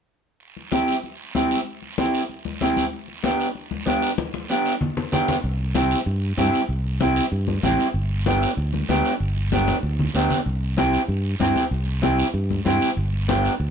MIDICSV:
0, 0, Header, 1, 4, 480
1, 0, Start_track
1, 0, Key_signature, 0, "major"
1, 0, Tempo, 314301
1, 619, Time_signature, 4, 2, 24, 8
1, 20930, End_track
2, 0, Start_track
2, 0, Title_t, "Clean electric guitar"
2, 0, Program_c, 0, 27
2, 1094, Note_on_c, 0, 60, 69
2, 1105, Note_on_c, 0, 64, 60
2, 1107, Note_on_c, 0, 67, 76
2, 1434, Note_off_c, 0, 60, 0
2, 1436, Note_off_c, 0, 64, 0
2, 1440, Note_off_c, 0, 67, 0
2, 2059, Note_on_c, 0, 60, 75
2, 2066, Note_on_c, 0, 64, 66
2, 2073, Note_on_c, 0, 67, 79
2, 2396, Note_off_c, 0, 60, 0
2, 2400, Note_off_c, 0, 64, 0
2, 2403, Note_off_c, 0, 67, 0
2, 3030, Note_on_c, 0, 60, 70
2, 3036, Note_on_c, 0, 64, 66
2, 3043, Note_on_c, 0, 67, 76
2, 3362, Note_off_c, 0, 60, 0
2, 3366, Note_off_c, 0, 64, 0
2, 3368, Note_off_c, 0, 67, 0
2, 3988, Note_on_c, 0, 60, 73
2, 3996, Note_on_c, 0, 64, 72
2, 4003, Note_on_c, 0, 67, 85
2, 4322, Note_off_c, 0, 60, 0
2, 4326, Note_off_c, 0, 64, 0
2, 4329, Note_off_c, 0, 67, 0
2, 4948, Note_on_c, 0, 59, 71
2, 4955, Note_on_c, 0, 62, 66
2, 4962, Note_on_c, 0, 67, 82
2, 5282, Note_off_c, 0, 59, 0
2, 5286, Note_off_c, 0, 62, 0
2, 5286, Note_off_c, 0, 67, 0
2, 5893, Note_on_c, 0, 59, 76
2, 5902, Note_on_c, 0, 62, 72
2, 5913, Note_on_c, 0, 67, 85
2, 6234, Note_off_c, 0, 59, 0
2, 6240, Note_off_c, 0, 62, 0
2, 6242, Note_off_c, 0, 67, 0
2, 6868, Note_on_c, 0, 59, 71
2, 6876, Note_on_c, 0, 62, 69
2, 6882, Note_on_c, 0, 67, 86
2, 7202, Note_off_c, 0, 59, 0
2, 7206, Note_off_c, 0, 62, 0
2, 7208, Note_off_c, 0, 67, 0
2, 7821, Note_on_c, 0, 59, 78
2, 7827, Note_on_c, 0, 62, 75
2, 7834, Note_on_c, 0, 67, 90
2, 8158, Note_off_c, 0, 59, 0
2, 8161, Note_off_c, 0, 62, 0
2, 8164, Note_off_c, 0, 67, 0
2, 8777, Note_on_c, 0, 60, 76
2, 8785, Note_on_c, 0, 64, 67
2, 8797, Note_on_c, 0, 67, 80
2, 9115, Note_off_c, 0, 60, 0
2, 9120, Note_off_c, 0, 64, 0
2, 9123, Note_off_c, 0, 67, 0
2, 9739, Note_on_c, 0, 60, 79
2, 9749, Note_on_c, 0, 64, 73
2, 9753, Note_on_c, 0, 67, 87
2, 10076, Note_off_c, 0, 60, 0
2, 10078, Note_off_c, 0, 64, 0
2, 10083, Note_off_c, 0, 67, 0
2, 10697, Note_on_c, 0, 60, 75
2, 10709, Note_on_c, 0, 64, 70
2, 10711, Note_on_c, 0, 67, 84
2, 11035, Note_off_c, 0, 60, 0
2, 11038, Note_off_c, 0, 64, 0
2, 11041, Note_off_c, 0, 67, 0
2, 11656, Note_on_c, 0, 60, 82
2, 11663, Note_on_c, 0, 64, 72
2, 11670, Note_on_c, 0, 67, 86
2, 11993, Note_off_c, 0, 60, 0
2, 11996, Note_off_c, 0, 64, 0
2, 12000, Note_off_c, 0, 67, 0
2, 12615, Note_on_c, 0, 59, 72
2, 12621, Note_on_c, 0, 62, 72
2, 12633, Note_on_c, 0, 67, 84
2, 12952, Note_off_c, 0, 59, 0
2, 12956, Note_off_c, 0, 62, 0
2, 12957, Note_off_c, 0, 67, 0
2, 13576, Note_on_c, 0, 59, 85
2, 13586, Note_on_c, 0, 62, 73
2, 13594, Note_on_c, 0, 67, 92
2, 13912, Note_off_c, 0, 59, 0
2, 13917, Note_off_c, 0, 62, 0
2, 13920, Note_off_c, 0, 67, 0
2, 14539, Note_on_c, 0, 59, 73
2, 14546, Note_on_c, 0, 62, 70
2, 14557, Note_on_c, 0, 67, 83
2, 14873, Note_off_c, 0, 59, 0
2, 14876, Note_off_c, 0, 62, 0
2, 14879, Note_off_c, 0, 67, 0
2, 15501, Note_on_c, 0, 59, 75
2, 15508, Note_on_c, 0, 62, 73
2, 15515, Note_on_c, 0, 67, 89
2, 15834, Note_off_c, 0, 59, 0
2, 15837, Note_off_c, 0, 62, 0
2, 15841, Note_off_c, 0, 67, 0
2, 16452, Note_on_c, 0, 60, 77
2, 16463, Note_on_c, 0, 64, 65
2, 16466, Note_on_c, 0, 67, 87
2, 16790, Note_off_c, 0, 60, 0
2, 16792, Note_off_c, 0, 64, 0
2, 16796, Note_off_c, 0, 67, 0
2, 17410, Note_on_c, 0, 60, 81
2, 17417, Note_on_c, 0, 64, 72
2, 17425, Note_on_c, 0, 67, 89
2, 17748, Note_off_c, 0, 60, 0
2, 17752, Note_off_c, 0, 64, 0
2, 17754, Note_off_c, 0, 67, 0
2, 18359, Note_on_c, 0, 60, 76
2, 18366, Note_on_c, 0, 64, 68
2, 18374, Note_on_c, 0, 67, 81
2, 18702, Note_off_c, 0, 60, 0
2, 18707, Note_off_c, 0, 64, 0
2, 18708, Note_off_c, 0, 67, 0
2, 19325, Note_on_c, 0, 60, 81
2, 19335, Note_on_c, 0, 64, 76
2, 19340, Note_on_c, 0, 67, 88
2, 19667, Note_off_c, 0, 60, 0
2, 19668, Note_off_c, 0, 64, 0
2, 19673, Note_off_c, 0, 67, 0
2, 20287, Note_on_c, 0, 59, 75
2, 20295, Note_on_c, 0, 62, 68
2, 20301, Note_on_c, 0, 67, 86
2, 20627, Note_off_c, 0, 59, 0
2, 20631, Note_off_c, 0, 62, 0
2, 20633, Note_off_c, 0, 67, 0
2, 20930, End_track
3, 0, Start_track
3, 0, Title_t, "Fingered electric bass"
3, 0, Program_c, 1, 33
3, 8303, Note_on_c, 1, 36, 86
3, 9070, Note_off_c, 1, 36, 0
3, 9258, Note_on_c, 1, 43, 97
3, 9643, Note_off_c, 1, 43, 0
3, 9733, Note_on_c, 1, 43, 77
3, 9928, Note_off_c, 1, 43, 0
3, 10213, Note_on_c, 1, 36, 86
3, 10983, Note_off_c, 1, 36, 0
3, 11175, Note_on_c, 1, 43, 90
3, 11560, Note_off_c, 1, 43, 0
3, 11651, Note_on_c, 1, 33, 82
3, 11846, Note_off_c, 1, 33, 0
3, 12126, Note_on_c, 1, 31, 90
3, 12897, Note_off_c, 1, 31, 0
3, 13090, Note_on_c, 1, 38, 93
3, 13476, Note_off_c, 1, 38, 0
3, 13572, Note_on_c, 1, 38, 84
3, 13765, Note_off_c, 1, 38, 0
3, 14054, Note_on_c, 1, 31, 91
3, 14822, Note_off_c, 1, 31, 0
3, 15011, Note_on_c, 1, 38, 95
3, 15396, Note_off_c, 1, 38, 0
3, 15492, Note_on_c, 1, 38, 83
3, 15685, Note_off_c, 1, 38, 0
3, 15973, Note_on_c, 1, 36, 86
3, 16741, Note_off_c, 1, 36, 0
3, 16926, Note_on_c, 1, 43, 96
3, 17313, Note_off_c, 1, 43, 0
3, 17403, Note_on_c, 1, 43, 84
3, 17600, Note_off_c, 1, 43, 0
3, 17886, Note_on_c, 1, 36, 92
3, 18657, Note_off_c, 1, 36, 0
3, 18842, Note_on_c, 1, 43, 96
3, 19231, Note_off_c, 1, 43, 0
3, 19329, Note_on_c, 1, 43, 83
3, 19523, Note_off_c, 1, 43, 0
3, 19805, Note_on_c, 1, 31, 92
3, 20577, Note_off_c, 1, 31, 0
3, 20765, Note_on_c, 1, 38, 96
3, 20930, Note_off_c, 1, 38, 0
3, 20930, End_track
4, 0, Start_track
4, 0, Title_t, "Drums"
4, 615, Note_on_c, 9, 74, 60
4, 768, Note_off_c, 9, 74, 0
4, 864, Note_on_c, 9, 63, 32
4, 1017, Note_off_c, 9, 63, 0
4, 1100, Note_on_c, 9, 63, 77
4, 1104, Note_on_c, 9, 73, 60
4, 1253, Note_off_c, 9, 63, 0
4, 1256, Note_off_c, 9, 73, 0
4, 1343, Note_on_c, 9, 73, 63
4, 1496, Note_off_c, 9, 73, 0
4, 1582, Note_on_c, 9, 63, 29
4, 1582, Note_on_c, 9, 74, 59
4, 1735, Note_off_c, 9, 63, 0
4, 1735, Note_off_c, 9, 74, 0
4, 2060, Note_on_c, 9, 63, 74
4, 2066, Note_on_c, 9, 73, 56
4, 2213, Note_off_c, 9, 63, 0
4, 2219, Note_off_c, 9, 73, 0
4, 2307, Note_on_c, 9, 73, 65
4, 2460, Note_off_c, 9, 73, 0
4, 2546, Note_on_c, 9, 74, 64
4, 2698, Note_off_c, 9, 74, 0
4, 2783, Note_on_c, 9, 63, 32
4, 2936, Note_off_c, 9, 63, 0
4, 3024, Note_on_c, 9, 63, 83
4, 3030, Note_on_c, 9, 73, 59
4, 3177, Note_off_c, 9, 63, 0
4, 3183, Note_off_c, 9, 73, 0
4, 3266, Note_on_c, 9, 73, 64
4, 3419, Note_off_c, 9, 73, 0
4, 3505, Note_on_c, 9, 63, 29
4, 3509, Note_on_c, 9, 74, 66
4, 3657, Note_off_c, 9, 63, 0
4, 3662, Note_off_c, 9, 74, 0
4, 3744, Note_on_c, 9, 63, 63
4, 3897, Note_off_c, 9, 63, 0
4, 3985, Note_on_c, 9, 63, 75
4, 3989, Note_on_c, 9, 73, 60
4, 4138, Note_off_c, 9, 63, 0
4, 4141, Note_off_c, 9, 73, 0
4, 4226, Note_on_c, 9, 63, 62
4, 4231, Note_on_c, 9, 73, 61
4, 4378, Note_off_c, 9, 63, 0
4, 4384, Note_off_c, 9, 73, 0
4, 4476, Note_on_c, 9, 74, 63
4, 4628, Note_off_c, 9, 74, 0
4, 4705, Note_on_c, 9, 63, 32
4, 4858, Note_off_c, 9, 63, 0
4, 4943, Note_on_c, 9, 63, 80
4, 4952, Note_on_c, 9, 73, 62
4, 5096, Note_off_c, 9, 63, 0
4, 5105, Note_off_c, 9, 73, 0
4, 5187, Note_on_c, 9, 73, 64
4, 5340, Note_off_c, 9, 73, 0
4, 5422, Note_on_c, 9, 63, 28
4, 5427, Note_on_c, 9, 74, 63
4, 5575, Note_off_c, 9, 63, 0
4, 5580, Note_off_c, 9, 74, 0
4, 5665, Note_on_c, 9, 63, 63
4, 5818, Note_off_c, 9, 63, 0
4, 5902, Note_on_c, 9, 73, 59
4, 5905, Note_on_c, 9, 63, 75
4, 6055, Note_off_c, 9, 73, 0
4, 6057, Note_off_c, 9, 63, 0
4, 6145, Note_on_c, 9, 73, 64
4, 6298, Note_off_c, 9, 73, 0
4, 6382, Note_on_c, 9, 74, 62
4, 6385, Note_on_c, 9, 63, 89
4, 6535, Note_off_c, 9, 74, 0
4, 6538, Note_off_c, 9, 63, 0
4, 6626, Note_on_c, 9, 63, 71
4, 6779, Note_off_c, 9, 63, 0
4, 6867, Note_on_c, 9, 73, 62
4, 7019, Note_off_c, 9, 73, 0
4, 7107, Note_on_c, 9, 73, 63
4, 7260, Note_off_c, 9, 73, 0
4, 7343, Note_on_c, 9, 74, 64
4, 7345, Note_on_c, 9, 64, 83
4, 7495, Note_off_c, 9, 74, 0
4, 7498, Note_off_c, 9, 64, 0
4, 7590, Note_on_c, 9, 64, 74
4, 7743, Note_off_c, 9, 64, 0
4, 7824, Note_on_c, 9, 73, 61
4, 7830, Note_on_c, 9, 64, 78
4, 7977, Note_off_c, 9, 73, 0
4, 7983, Note_off_c, 9, 64, 0
4, 8065, Note_on_c, 9, 73, 63
4, 8072, Note_on_c, 9, 64, 90
4, 8218, Note_off_c, 9, 73, 0
4, 8225, Note_off_c, 9, 64, 0
4, 8308, Note_on_c, 9, 74, 63
4, 8461, Note_off_c, 9, 74, 0
4, 8553, Note_on_c, 9, 63, 33
4, 8706, Note_off_c, 9, 63, 0
4, 8782, Note_on_c, 9, 73, 64
4, 8786, Note_on_c, 9, 63, 83
4, 8935, Note_off_c, 9, 73, 0
4, 8938, Note_off_c, 9, 63, 0
4, 9028, Note_on_c, 9, 73, 66
4, 9181, Note_off_c, 9, 73, 0
4, 9267, Note_on_c, 9, 63, 32
4, 9269, Note_on_c, 9, 74, 67
4, 9420, Note_off_c, 9, 63, 0
4, 9422, Note_off_c, 9, 74, 0
4, 9741, Note_on_c, 9, 63, 77
4, 9743, Note_on_c, 9, 73, 64
4, 9893, Note_off_c, 9, 63, 0
4, 9896, Note_off_c, 9, 73, 0
4, 9980, Note_on_c, 9, 73, 68
4, 10133, Note_off_c, 9, 73, 0
4, 10224, Note_on_c, 9, 74, 64
4, 10377, Note_off_c, 9, 74, 0
4, 10464, Note_on_c, 9, 63, 34
4, 10617, Note_off_c, 9, 63, 0
4, 10700, Note_on_c, 9, 63, 88
4, 10701, Note_on_c, 9, 73, 64
4, 10853, Note_off_c, 9, 63, 0
4, 10853, Note_off_c, 9, 73, 0
4, 10939, Note_on_c, 9, 73, 67
4, 11091, Note_off_c, 9, 73, 0
4, 11177, Note_on_c, 9, 74, 66
4, 11183, Note_on_c, 9, 63, 31
4, 11330, Note_off_c, 9, 74, 0
4, 11336, Note_off_c, 9, 63, 0
4, 11418, Note_on_c, 9, 63, 68
4, 11571, Note_off_c, 9, 63, 0
4, 11658, Note_on_c, 9, 63, 82
4, 11663, Note_on_c, 9, 73, 61
4, 11811, Note_off_c, 9, 63, 0
4, 11816, Note_off_c, 9, 73, 0
4, 11904, Note_on_c, 9, 73, 68
4, 12056, Note_off_c, 9, 73, 0
4, 12146, Note_on_c, 9, 74, 66
4, 12299, Note_off_c, 9, 74, 0
4, 12379, Note_on_c, 9, 63, 32
4, 12531, Note_off_c, 9, 63, 0
4, 12617, Note_on_c, 9, 73, 63
4, 12618, Note_on_c, 9, 63, 84
4, 12769, Note_off_c, 9, 73, 0
4, 12771, Note_off_c, 9, 63, 0
4, 12861, Note_on_c, 9, 73, 66
4, 13014, Note_off_c, 9, 73, 0
4, 13100, Note_on_c, 9, 63, 32
4, 13100, Note_on_c, 9, 74, 65
4, 13252, Note_off_c, 9, 63, 0
4, 13253, Note_off_c, 9, 74, 0
4, 13339, Note_on_c, 9, 63, 63
4, 13492, Note_off_c, 9, 63, 0
4, 13582, Note_on_c, 9, 63, 77
4, 13583, Note_on_c, 9, 73, 62
4, 13735, Note_off_c, 9, 63, 0
4, 13736, Note_off_c, 9, 73, 0
4, 13818, Note_on_c, 9, 73, 70
4, 13971, Note_off_c, 9, 73, 0
4, 14056, Note_on_c, 9, 74, 65
4, 14208, Note_off_c, 9, 74, 0
4, 14301, Note_on_c, 9, 63, 33
4, 14454, Note_off_c, 9, 63, 0
4, 14538, Note_on_c, 9, 63, 87
4, 14538, Note_on_c, 9, 73, 62
4, 14691, Note_off_c, 9, 63, 0
4, 14691, Note_off_c, 9, 73, 0
4, 14774, Note_on_c, 9, 73, 70
4, 14782, Note_on_c, 9, 63, 82
4, 14927, Note_off_c, 9, 73, 0
4, 14935, Note_off_c, 9, 63, 0
4, 15013, Note_on_c, 9, 74, 67
4, 15166, Note_off_c, 9, 74, 0
4, 15263, Note_on_c, 9, 64, 68
4, 15416, Note_off_c, 9, 64, 0
4, 15495, Note_on_c, 9, 73, 65
4, 15648, Note_off_c, 9, 73, 0
4, 15736, Note_on_c, 9, 73, 63
4, 15739, Note_on_c, 9, 64, 68
4, 15888, Note_off_c, 9, 73, 0
4, 15891, Note_off_c, 9, 64, 0
4, 15975, Note_on_c, 9, 74, 67
4, 16128, Note_off_c, 9, 74, 0
4, 16220, Note_on_c, 9, 63, 32
4, 16373, Note_off_c, 9, 63, 0
4, 16458, Note_on_c, 9, 73, 66
4, 16461, Note_on_c, 9, 63, 87
4, 16611, Note_off_c, 9, 73, 0
4, 16614, Note_off_c, 9, 63, 0
4, 16695, Note_on_c, 9, 73, 69
4, 16848, Note_off_c, 9, 73, 0
4, 16936, Note_on_c, 9, 74, 68
4, 16939, Note_on_c, 9, 63, 32
4, 17089, Note_off_c, 9, 74, 0
4, 17092, Note_off_c, 9, 63, 0
4, 17412, Note_on_c, 9, 73, 61
4, 17416, Note_on_c, 9, 63, 78
4, 17565, Note_off_c, 9, 73, 0
4, 17568, Note_off_c, 9, 63, 0
4, 17649, Note_on_c, 9, 63, 67
4, 17652, Note_on_c, 9, 73, 68
4, 17802, Note_off_c, 9, 63, 0
4, 17805, Note_off_c, 9, 73, 0
4, 17897, Note_on_c, 9, 74, 63
4, 18049, Note_off_c, 9, 74, 0
4, 18132, Note_on_c, 9, 63, 32
4, 18285, Note_off_c, 9, 63, 0
4, 18373, Note_on_c, 9, 73, 67
4, 18375, Note_on_c, 9, 63, 84
4, 18525, Note_off_c, 9, 73, 0
4, 18528, Note_off_c, 9, 63, 0
4, 18611, Note_on_c, 9, 73, 67
4, 18763, Note_off_c, 9, 73, 0
4, 18854, Note_on_c, 9, 74, 68
4, 18856, Note_on_c, 9, 63, 32
4, 19006, Note_off_c, 9, 74, 0
4, 19009, Note_off_c, 9, 63, 0
4, 19096, Note_on_c, 9, 63, 67
4, 19249, Note_off_c, 9, 63, 0
4, 19333, Note_on_c, 9, 63, 81
4, 19333, Note_on_c, 9, 73, 60
4, 19485, Note_off_c, 9, 73, 0
4, 19486, Note_off_c, 9, 63, 0
4, 19569, Note_on_c, 9, 73, 68
4, 19721, Note_off_c, 9, 73, 0
4, 19813, Note_on_c, 9, 74, 63
4, 19966, Note_off_c, 9, 74, 0
4, 20051, Note_on_c, 9, 63, 35
4, 20204, Note_off_c, 9, 63, 0
4, 20296, Note_on_c, 9, 63, 91
4, 20297, Note_on_c, 9, 73, 69
4, 20449, Note_off_c, 9, 63, 0
4, 20450, Note_off_c, 9, 73, 0
4, 20537, Note_on_c, 9, 73, 67
4, 20690, Note_off_c, 9, 73, 0
4, 20776, Note_on_c, 9, 74, 71
4, 20779, Note_on_c, 9, 63, 31
4, 20929, Note_off_c, 9, 74, 0
4, 20930, Note_off_c, 9, 63, 0
4, 20930, End_track
0, 0, End_of_file